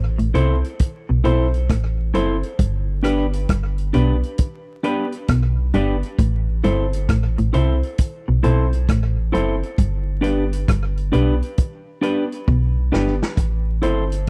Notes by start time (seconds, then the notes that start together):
Already playing: A1
0.18 A1 A2, closed hi-hat
0.34 C2 C3 C4 E4 A4 C5, closed hi-hat
0.64 closed hi-hat
0.79 kick, closed hi-hat
1.09 B1 B2
1.24 B1 B2 C4 E4 A4 C5, closed hi-hat
1.54 closed hi-hat
1.69 A1 A2, kick, cross-stick, closed hi-hat
2.14 F#1 F#2 C4 E4 A4 C5, closed hi-hat
2.43 closed hi-hat
2.59 G1 G2, kick, closed hi-hat
3.03 B3 D4 G4 B4, cross-stick, closed hi-hat
3.33 closed hi-hat
3.49 G1 G2, kick, cross-stick, closed hi-hat
3.78 closed hi-hat
3.93 B1 B2 B3 D4 G4 B4, closed hi-hat
4.23 closed hi-hat
4.38 kick, closed hi-hat
4.83 B3 D4 G4 B4, closed hi-hat
5.12 closed hi-hat
5.28 B1 B2, kick, cross-stick, closed hi-hat
5.74 G1 G2 B3 D4 G4 B4, closed hi-hat
6.03 closed hi-hat
6.19 A1 A2, kick, closed hi-hat
6.64 G1 G2 C4 E4 A4 C5, closed hi-hat
6.93 closed hi-hat
7.09 A1 A2, kick, cross-stick, closed hi-hat
7.38 A1 A2, closed hi-hat
7.53 C2 C3 C4 E4 A4 C5, closed hi-hat
7.83 closed hi-hat
7.98 kick, closed hi-hat
8.28 B1 B2
8.43 B1 B2 C4 E4 A4 C5, closed hi-hat
8.73 closed hi-hat
8.89 A1 A2, kick, cross-stick, closed hi-hat
9.32 F#1 F#2 C4 E4 A4 C5, closed hi-hat
9.63 closed hi-hat
9.78 G1 G2, kick, closed hi-hat
10.21 B3 D4 G4 B4, closed hi-hat
10.53 closed hi-hat
10.68 G1 G2, kick, cross-stick, closed hi-hat
10.97 closed hi-hat
11.12 B1 B2 B3 D4 G4 B4, closed hi-hat
11.42 closed hi-hat
11.58 kick, closed hi-hat
12.01 B3 D4 G4 B4, closed hi-hat
12.32 closed hi-hat
12.48 B1 B2, kick
12.92 G1 G2 B3 D4 G4 B4, snare
13.23 snare
13.37 A1, kick, closed hi-hat
13.82 G1 C4 E4 A4 C5, closed hi-hat
14.12 closed hi-hat